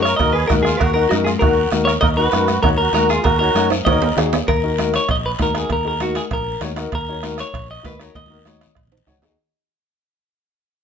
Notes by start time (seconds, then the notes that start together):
Already playing: F#2
0.02 A#4 C#5, bombo rim, short guiro
0.16 D#2 D#4 F#4 A#4 D#5, bombo low, bombo rim, cowbell, long guiro
0.21 low conga
0.33 G#4 B4
0.47 D#2 D#4 F#4 A#4, bombo low, bombo rim, cowbell, short guiro
0.52 high conga
0.63 F4 G#4, bombo rim, short guiro
0.77 D#2 F#4 A#4, bombo low, bombo rim, cowbell
0.82 long guiro
0.93 D#4 F#4 A#4
1.09 F#2 D#4 F#4 A#4, bombo rim, cowbell, high conga, short guiro
1.25 F4 G#4, bombo rim, high conga, short guiro
1.39 D#2 D#4 F#4 A#4, bombo low, bombo rim, cowbell, low conga, long guiro
1.71 D#2 D#4 F#4 A#4, bombo rim, cowbell, high conga, short guiro
1.85 A#4 C#5, bombo rim, short guiro
2.01 D#2 A#4 D#5, bombo low, bombo rim, cowbell, long guiro
2.17 D#4 F#4 A#4 B4
2.32 F#2 D#4 F#4 A#4, bombo rim, cowbell, high conga, short guiro
2.48 bombo rim, high conga, short guiro
2.63 D#2 D#4 F#4 A#4 C#5, bombo low, bombo rim, cowbell, low conga, long guiro
2.78 F#4 A#4
2.93 D#2 D#4 F#4 A#4, bombo rim, cowbell, high conga, short guiro
3.08 F4 G#4, bombo rim, short guiro
3.24 D#2 F#4 A#4, bombo low, bombo rim, cowbell, long guiro
3.39 D#4 F#4 A#4 C#5
3.55 F#2 D#4 F#4 C#5, bombo rim, cowbell, high conga, short guiro
3.70 bombo rim, high conga, high timbale, short guiro
3.85 D#2 D#4 F#4 A#4 C#5 D#5, bombo low, bombo rim, cowbell, high conga, high timbale, long guiro
4.02 low timbale
4.16 D#2 D#4 F#4 G#4, bombo rim, cowbell, low conga, low timbale, short guiro
4.33 bombo rim, low conga, low timbale, short guiro
4.48 D#2 A#4, bombo low, bombo rim, high timbale, long guiro
4.63 D#4 F#4 A#4
4.78 D#4 F#4 A#4, bombo rim, high conga, high timbale, short guiro
4.94 C#5, bombo rim, high timbale, short guiro
5.09 A#1 D#5, bombo low, bombo rim, high timbale, long guiro
5.26 B4
5.39 D#2 D#4 F#4 A#4, bombo low, bombo rim, high conga, high timbale, short guiro
5.54 D#4 F#4 G#4 A#4, bombo rim, high timbale, short guiro
5.69 D#2 A#4, bombo low, bombo rim, high timbale, long guiro
5.85 D#4 F#4 G#4 A#4
6.00 D#4 F#4 A#4, bombo rim, high conga, high timbale, short guiro
6.15 G#4, bombo rim, high conga, high timbale, short guiro
6.31 A#1 A#4, bombo low, bombo rim, high timbale, long guiro
6.61 D#2 D#4 F#4 C#5, bombo rim, high conga, high timbale, low timbale, short guiro
6.76 D#4 F#4 A#4, bombo rim, high timbale, short guiro
6.92 D#2 A#4, bombo low, bombo rim, high timbale, long guiro
7.09 D#4 F#4 C#5
7.23 D#4 F#4 A#4, bombo rim, high conga, high timbale, short guiro
7.38 C#5, bombo rim, high timbale, short guiro
7.53 A#1, bombo low, bombo rim, high timbale, long guiro
7.71 D#5
7.83 D#2 D#4 F#4 A#4 B4, bombo low, bombo rim, high conga, high timbale, short guiro
7.99 D#4 F#4 A#4 C#5, bombo rim, high timbale, short guiro
8.15 D#2 D#5, bombo low, bombo rim, high conga, high timbale, long guiro
8.26 D#4, high conga
8.30 F#4 A#4
8.37 low conga
8.45 D#4 F#4 C#5, bombo rim, high conga, high timbale, short guiro
8.61 bombo rim, high timbale, short guiro
8.66 low conga
8.75 A#1, bombo low, bombo rim, high timbale, long guiro
8.87 low conga
8.92 high timbale
8.97 low conga
9.07 C#2 D#4 F#4 C#5 F#5, bombo low, bombo rim, low conga, high timbale, short guiro
9.21 D#2 D#4 F#4 G#4 D#5, bombo rim, low timbale, short guiro
9.27 low conga